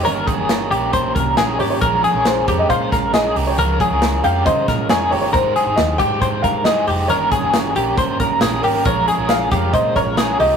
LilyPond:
<<
  \new Staff \with { instrumentName = "Upright piano" } { \time 4/4 \key bes \dorian \tempo 4 = 136 des''2 r4. des''16 des''16~ | des''4 c''8. ees''16 f''4 ees''8. des''16~ | des''4. f''8 ees''4 des''8 des''16 des''16 | c''4 ees''8 g''4 f''8 ees''4 |
des''2 r4. bes'16 bes'16 | des''4 f''4 ees''8 des''4 ees''8 | }
  \new Staff \with { instrumentName = "Clean electric guitar" } { \time 4/4 \key bes \dorian bes'8 aes'4 g'8 c''8 bes'8 aes'8 g'8 | bes'8 aes'4 g'8 c''8 bes'8 aes'8 g'8 | bes'8 aes'4 g'8 c''8 bes'8 aes'8 g'8 | bes'8 aes'4 g'8 c''8 bes'8 aes'8 g'8 |
bes'8 aes'4 g'8 c''8 bes'8 aes'8 g'8 | bes'8 aes'4 g'8 c''8 bes'8 aes'8 g'8 | }
  \new Staff \with { instrumentName = "Overdriven electric guitar" } { \time 4/4 \key bes \dorian <g, ees bes des' g' bes'>8. <bes des' g' bes'>8. <bes des' g' bes'>4. <bes des' g' bes'>8 <bes des' g' bes'>8 | <bes, f aes des' aes' bes'>8. <aes des' aes' bes'>8. <aes des' aes' bes'>4. <aes des' aes' bes'>8 <aes des' aes' bes'>8 | <des f aes des' f' bes'>8. <aes des' f' bes'>8. <aes des' f' bes'>4. <aes des' f' bes'>8 <aes des' f' bes'>8 | <aes ees' g' c''>8. <ees' g' c''>8. <aes ees' g' c''>4. <aes ees' g' c''>8 <aes ees' g' c''>8 |
<g, ees bes des' g' bes'>8. <bes des' g' bes'>8. <bes des' g' bes'>4. <bes des' g' bes'>8 <bes des' g' bes'>8 | <bes, f aes des' f' bes'>8. <aes des' f' bes'>8. <aes des' f' bes'>4. <aes des' f' bes'>8 <aes des' f' bes'>8 | }
  \new Staff \with { instrumentName = "Picked electric bass" } { \clef bass \time 4/4 \key bes \dorian g,,8 r16 g,,8. bes,,4 c,8 bes,,8 aes,,8 | bes,,8 r16 bes,,8. f,8 bes,8 bes,,4 c,8 | des,8 r16 des,8. f,8 des8 bes,8 f,8 g,,8 | aes,,8 r16 aes,,16 ees,8 aes,8 aes,8 g,4 f,,8 |
g,,8 r16 g,,8. bes,,8 g,8 g,,8 bes,,8 aes,,8 | bes,,8 r16 bes,,8. f,8 bes,8 bes,,4 c,8 | }
  \new DrumStaff \with { instrumentName = "Drums" } \drummode { \time 4/4 hh8 <hh bd>8 <hh sn>8 hh8 <hh bd>8 <hh bd>8 <hh sn>8 hho8 | <hh bd>8 hh8 <hh sn>8 <hh bd>8 <hh bd>8 <hh bd sn>8 <hh sn>8 hho8 | hh8 <hh bd>8 <hh sn>8 hh8 <hh bd>8 <hh bd sn>8 <hh sn>8 hho8 | <hh bd>8 hh8 <hh sn>8 <hh bd>8 <hh bd>8 <hh bd>8 <hh sn>8 hho8 |
hh8 <hh bd>8 <hh sn>8 hh8 <hh bd>8 <hh bd>8 <hh sn>8 hho8 | <hh bd>8 hh8 <hh sn>8 <hh bd>8 <hh bd>8 <hh bd>8 <hh sn>8 hho8 | }
>>